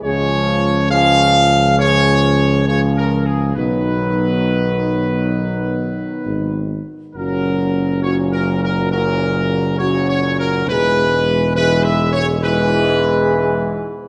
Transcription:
<<
  \new Staff \with { instrumentName = "Trumpet section" } { \time 4/4 \key fis \major \tempo 4 = 68 cis''4 eis''4 cis''4 \tuplet 3/2 { cis''8 ais'8 gis'8 } | b'2.~ b'8 r8 | ais'4 \tuplet 3/2 { cis''8 ais'8 ais'8 } ais'4 \tuplet 3/2 { cis''8 cis''8 ais'8 } | b'4 \tuplet 3/2 { b'8 e''8 cis''8 } b'4. r8 | }
  \new Staff \with { instrumentName = "French horn section" } { \time 4/4 \key fis \major <gis gis'>4 <gis gis'>4 <gis gis'>4 <gis gis'>4 | <b dis'>2.~ <b dis'>8 r8 | <cis' fis'>4 <cis' fis'>4 <cis' fis'>4 <cis' fis'>4 | <gis gis'>4 <gis gis'>4 <gis gis'>2 | }
  \new Staff \with { instrumentName = "Trombone section" } { \clef bass \time 4/4 \key fis \major <cis eis>4 <cis eis>4 <cis eis>4 <cis eis>4 | <dis fis>2.~ <dis fis>8 r8 | <ais, fis>4 <ais, fis>4 <ais, fis>4 <ais, fis>4 | <gis, e>4 <gis, e>4 <gis, e>2 | }
  \new Staff \with { instrumentName = "Tuba" } { \clef bass \time 4/4 \key fis \major cis,1 | b,,2. gis,,8 r8 | fis,,1 | e,,2.~ e,,8 r8 | }
>>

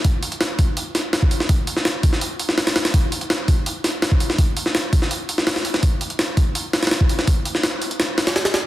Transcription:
\new DrumStaff \with { instrumentName = "Drums" } \drummode { \time 4/4 \tempo 4 = 166 <hho bd>8 hho16 hh16 <hho sn>8 <hho bd>8 hho8 <hho sn>8 <hho sn>16 bd16 hho16 sn16 | <hho bd>8 hho16 sn16 <hho sn>8 <hho bd>16 sn16 hho8 hho16 sn16 <hho sn>16 <hho sn>16 <hho sn>16 <hho sn>16 | <hho bd>8 hho16 hh16 <hho sn>8 <hho bd>8 hho8 <hho sn>8 <hho sn>16 bd16 hho16 sn16 | <hho bd>8 hho16 sn16 <hho sn>8 <hho bd>16 sn16 hho8 hho16 sn16 <hho sn>16 sn16 hho16 sn16 |
<hho bd>8 hho16 hh16 <hho sn>8 <hho bd>8 hho8 <hho sn>16 <hho sn>32 <hho sn>32 <hho sn>16 bd16 hho16 sn16 | <hho bd>8 hho16 sn16 <hho sn>8 hho16 hh16 <hho sn>8 <hho sn>16 <hho sn>16 <hho sn>16 <hho sn>16 <hho sn>8 | }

